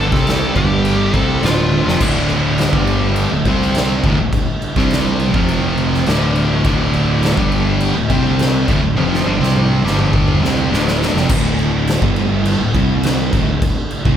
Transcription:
Already playing: fingered electric bass G1, distorted electric guitar G2
0.00 distorted electric guitar D3, lead electric guitar A4
0.12 fingered electric bass C2, distorted electric guitar C3 G3 C4, kick, snare
0.27 snare, crash
0.56 fingered electric bass G1, distorted electric guitar G2 D3 G3, lead electric guitar G4, kick, crash
0.85 crash
1.14 fingered electric bass C2, distorted electric guitar C3 G3 C4, lead electric guitar A4, kick, crash
1.42 fingered electric bass D1, distorted electric guitar D2 A2 D3, lead electric guitar F4, snare, crash
1.72 high tom
1.86 fingered electric bass F1, distorted electric guitar F2 C3, snare
2.00 fingered electric bass D1, distorted electric guitar D2 A2 D3, kick, crash
2.30 crash
2.58 snare, crash
2.73 fingered electric bass G1, distorted electric guitar G2 D3 G3, kick
2.87 crash
3.16 crash
3.31 fingered electric bass D1, distorted electric guitar D2 A2
3.45 fingered electric bass C2, distorted electric guitar C3 G3 C4, kick, crash
3.62 snare
3.75 snare, crash
4.03 fingered electric bass D1, distorted electric guitar D2 A2, kick, crash
4.18 fingered electric bass D1, distorted electric guitar D2 A2
4.33 kick, crash
4.62 crash
4.76 fingered electric bass C2, distorted electric guitar C3 G3 C4, kick, snare
4.91 snare, crash
5.19 crash
5.34 fingered electric bass F1, distorted electric guitar F2 C3 F3, kick
5.49 crash
5.77 crash
5.94 snare
6.06 fingered electric bass D1, distorted electric guitar D2 A2 D3, synth drone D3 A3 E4, snare, crash
6.35 crash
6.64 fingered electric bass D1, distorted electric guitar D2 A2 D3, kick, crash
6.93 crash
7.23 snare, crash
7.37 fingered electric bass G1, distorted electric guitar G2 D3 G3, kick
7.52 crash
7.80 crash
7.96 fingered electric bass D1, distorted electric guitar D2 A2
8.10 fingered electric bass C2, distorted electric guitar C3 G3 C4, kick, crash
8.39 snare, crash
8.68 fingered electric bass D1, distorted electric guitar D2 A2, kick, crash
8.83 fingered electric bass D1, distorted electric guitar D2 A2
8.97 fingered electric bass F1, distorted electric guitar F2 C3 F3, high tom
9.14 snare
9.26 fingered electric bass G1, distorted electric guitar G2 D3
9.40 fingered electric bass C2, distorted electric guitar C3 G3 C4, snare
9.56 mid tom
9.84 fingered electric bass G1, distorted electric guitar G2 D3 G3, snare
9.99 mid tom
10.13 kick
10.28 mid tom
10.42 fingered electric bass C2, distorted electric guitar C3 G3 C4, snare
10.72 fingered electric bass D1, distorted electric guitar D2 A2 D3, snare
10.88 snare
11.02 snare
11.14 fingered electric bass F1, distorted electric guitar F2 C3, snare
11.29 fingered electric bass D1, distorted electric guitar D2 A2 D3, kick, crash
11.59 crash
11.87 snare, crash
12.02 fingered electric bass G1, distorted electric guitar G2 D3 G3, kick
12.16 crash
12.45 crash
12.60 fingered electric bass D1, distorted electric guitar D2 A2
12.74 fingered electric bass C2, distorted electric guitar C3 G3 C4, kick, crash
13.03 snare, crash
13.33 fingered electric bass D1, distorted electric guitar D2 A2, kick, crash
13.48 fingered electric bass D1, distorted electric guitar D2 A2
13.62 kick, crash
13.90 crash
14.05 fingered electric bass C2, distorted electric guitar C3 G3 C4, kick

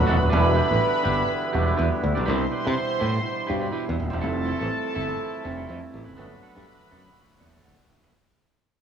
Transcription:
Already playing: harmonium D3 F#3 A3 B3 F#4, tine electric piano F#3 A3 B3 D4, string section B4 B5
0.05 fingered electric bass E1, clean electric guitar B3 F#4 A4
0.18 muted clean electric guitar stroke
0.22 fingered electric bass D#1
0.29 fingered electric bass E1, harmonium D3 E3 G3 B3 E4, tine electric piano G3 B3 D4, clean electric guitar D4 G4 B4, string section B4 B5
0.34 tine electric piano F#4
0.54 clean electric guitar D4 G4 B4
0.68 fingered electric bass A1, clean electric guitar D4 G4 B4
0.93 muted clean electric guitar stroke
1.03 fingered electric bass G1, clean electric guitar D4 G4 B4
1.17 muted clean electric guitar stroke
1.28 muted clean electric guitar stroke
1.42 muted clean electric guitar stroke
1.53 fingered electric bass E1, tine electric piano G3 B3 D4 F#4, clean electric guitar D4 G4 B4
1.66 clean electric guitar D4 G4 B4
1.77 fingered electric bass E2, clean electric guitar D4 G4 B4
1.91 muted clean electric guitar stroke
2.01 fingered electric bass D2, muted clean electric guitar stroke
2.15 fingered electric bass B1, clean electric guitar D4 G4 D5
2.25 fingered electric bass C2, tine electric piano B2 G3 D4 E4, harmonium B2 G3, clean electric guitar E4 G4 B4, string section C5 C6
2.51 clean electric guitar E4 G4 B4
2.64 fingered electric bass C3, clean electric guitar E4 G4 B4
2.89 muted clean electric guitar stroke
3.00 fingered electric bass A2, clean electric guitar E4 G4 B4
3.13 muted clean electric guitar stroke
3.23 muted clean electric guitar stroke
3.37 muted clean electric guitar stroke
3.47 fingered electric bass G2, tine electric piano B2 G3 D4 F#4, clean electric guitar E4 G4 B4
3.61 clean electric guitar E4 G4 B4
3.71 clean electric guitar E4 G4 B4
3.86 fingered electric bass E2, muted clean electric guitar stroke
3.97 fingered electric bass D#1, muted clean electric guitar stroke
4.10 fingered electric bass E1, clean electric guitar E4 G4 C5
4.20 fingered electric bass F1, harmonium E3 F3 A3 E4, tine electric piano G3 A3 C4 E4, clean electric guitar C4 E4 A4, string section A4 A5
4.45 clean electric guitar C4 E4 A4
4.59 fingered electric bass A1, clean electric guitar C4 E4 A4
4.84 muted clean electric guitar stroke
4.95 fingered electric bass G1, clean electric guitar C4 E4 A4
5.09 muted clean electric guitar stroke
5.19 muted clean electric guitar stroke
5.34 muted clean electric guitar stroke
5.43 fingered electric bass F1, tine electric piano G3 A3 C4 D4, clean electric guitar C4 E4 A4
5.57 clean electric guitar C4 E4 A4
5.67 fingered electric bass F2, clean electric guitar C4 E4 A4
5.81 muted clean electric guitar stroke
5.92 fingered electric bass A1, muted clean electric guitar stroke
6.05 fingered electric bass F#1, clean electric guitar C4 E4 B4
6.16 fingered electric bass G1, harmonium D3 F#3 B3 F#4, tine electric piano F#3 A3 B3 C#4, clean electric guitar B3 F#4 A4, string section B4 B5
6.25 tine electric piano D4
6.41 clean electric guitar B3 F#4 A4
6.55 fingered electric bass G2, clean electric guitar B3 F#4 A4
6.80 muted clean electric guitar stroke
6.90 fingered electric bass F#2, clean electric guitar B3 F#4 A4
7.04 muted clean electric guitar stroke
7.15 muted clean electric guitar stroke
7.29 muted clean electric guitar stroke
7.38 fingered electric bass E2, tine electric piano F#3 A3 A#3 D4 B4, clean electric guitar B3 F#4 A4
7.46 tine electric piano B3
7.52 clean electric guitar B3 F#4 A4
7.63 fingered electric bass D2, clean electric guitar B3 F#4 A4, tine electric piano F#5
7.78 muted clean electric guitar stroke
7.88 fingered electric bass F1, tine electric piano E5, muted clean electric guitar stroke
8.00 fingered electric bass F#1, clean electric guitar B3 F#4 B4

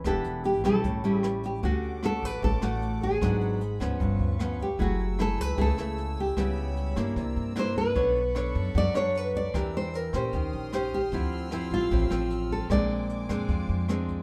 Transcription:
0.04 upright bass E1, nylon-string guitar E3 B3 D4 G4 A4, kick, cross-stick, closed hi-hat
0.24 upright bass E1, closed hi-hat
0.44 nylon-string guitar G4, closed hi-hat
0.64 upright bass B1, nylon-string guitar G3 C#4 E4 A4, cross-stick, closed hi-hat
0.84 upright bass A1, nylon-string guitar A2, kick, closed hi-hat
1.04 nylon-string guitar G3 C#4 E4, closed hi-hat
1.20 nylon-string guitar G4, cross-stick, closed hi-hat
1.43 nylon-string guitar G4, closed hi-hat
1.62 upright bass D2, nylon-string guitar D3 A3 C#4 F#4, string section C#4 F#5 D6, kick, closed hi-hat
1.83 closed hi-hat
2.03 nylon-string guitar A3 C#4 F#4 A4, cross-stick, closed hi-hat
2.23 upright bass A1, nylon-string guitar B4, kick, closed hi-hat
2.42 upright bass A1, nylon-string guitar A2 A4, kick, closed hi-hat
2.62 upright bass A1, nylon-string guitar A3 C#4 F#4, cross-stick, closed hi-hat
2.82 closed hi-hat
3.02 nylon-string guitar G#4, kick, closed hi-hat
3.21 upright bass G#1, nylon-string guitar G#2 F#3 B3 D4, string section G#4 B5, kick, cross-stick, closed hi-hat
3.41 closed hi-hat
3.61 closed hi-hat
3.80 upright bass D2, nylon-string guitar F3 B3 C#4, kick, cross-stick, closed hi-hat
3.99 upright bass G1, nylon-string guitar G2, string section B4 F5 C#6, kick, closed hi-hat
4.19 upright bass D2, closed hi-hat
4.39 nylon-string guitar F3 B3 C#4, cross-stick, closed hi-hat
4.59 nylon-string guitar G4, kick, closed hi-hat
4.79 upright bass F#1, nylon-string guitar F#3 A3 E4 F#4 G#4, string section G#5 E6, kick, closed hi-hat
4.99 closed hi-hat
5.19 nylon-string guitar A3 E4 G#4 A4, cross-stick, closed hi-hat
5.38 upright bass C#2, nylon-string guitar B4, kick, closed hi-hat
5.57 upright bass C#2, nylon-string guitar C#3 A3 E4 G#4, kick, closed hi-hat
5.61 nylon-string guitar A4
5.78 upright bass C#2, nylon-string guitar A3 E4, cross-stick, closed hi-hat
5.98 closed hi-hat
6.17 nylon-string guitar G4, kick, closed hi-hat
6.37 upright bass C#2, nylon-string guitar C#3 G3 B3 E4, string section C#5 B5, kick, cross-stick, closed hi-hat
6.57 closed hi-hat
6.77 closed hi-hat
6.96 upright bass G2, nylon-string guitar A#3 D4 E4, kick, cross-stick, closed hi-hat
7.16 upright bass C2, nylon-string guitar C3, string section D5 A#5 E6, kick, closed hi-hat
7.36 upright bass G2, closed hi-hat
7.56 nylon-string guitar A#3 D4 E4 C5, cross-stick, closed hi-hat
7.76 nylon-string guitar B4, kick, closed hi-hat
7.95 upright bass B1, nylon-string guitar B3 D4 A4 C#5, string section A5 B5 C#6, kick, closed hi-hat
8.16 closed hi-hat
8.35 nylon-string guitar D4 A4 C#5, cross-stick, closed hi-hat
8.55 upright bass F#2, kick, closed hi-hat
8.75 upright bass F#2, nylon-string guitar F#3 D5, kick, closed hi-hat
8.94 upright bass F#2, nylon-string guitar D4 A4 C#5, cross-stick, closed hi-hat
9.15 nylon-string guitar B4, closed hi-hat
9.34 nylon-string guitar D5, kick, closed hi-hat
9.54 upright bass E2, nylon-string guitar E3 D4 G4 A#4, string section D5 G5 E6, kick, cross-stick, closed hi-hat
9.73 nylon-string guitar C5, closed hi-hat
9.94 nylon-string guitar A#4, closed hi-hat
10.13 upright bass A#2, nylon-string guitar C#4 G4 C5, kick, cross-stick, closed hi-hat
10.33 upright bass D#2, nylon-string guitar D#3, string section G5 C6 D#6 F6, kick, closed hi-hat
10.53 upright bass A#1, closed hi-hat
10.73 nylon-string guitar C#4 G4 C5, cross-stick, closed hi-hat
10.92 nylon-string guitar G4, kick, closed hi-hat
11.12 upright bass D2, nylon-string guitar D3 F3 C4 E4, string section E6, kick, closed hi-hat
11.32 closed hi-hat
11.51 nylon-string guitar F3 C4 E4, cross-stick, closed hi-hat
11.71 upright bass A1, nylon-string guitar F4, kick, closed hi-hat
11.91 upright bass A1, nylon-string guitar A2 F3 C4 E4, kick, closed hi-hat
12.10 upright bass A1, nylon-string guitar F3 C4, cross-stick, closed hi-hat
12.30 closed hi-hat
12.50 nylon-string guitar A4, kick, closed hi-hat
12.70 upright bass A#1, nylon-string guitar A#2 G#3 C4 D4 D5, string section C5 G#5 D6, kick, cross-stick, closed hi-hat
12.90 closed hi-hat
13.09 closed hi-hat
13.29 upright bass F2, nylon-string guitar G#3 C4 D4, kick, cross-stick, closed hi-hat
13.48 upright bass F2, nylon-string guitar F3, kick, closed hi-hat
13.69 upright bass F2, closed hi-hat
13.89 nylon-string guitar G#3 C4 D4, cross-stick, closed hi-hat
14.08 kick, closed hi-hat

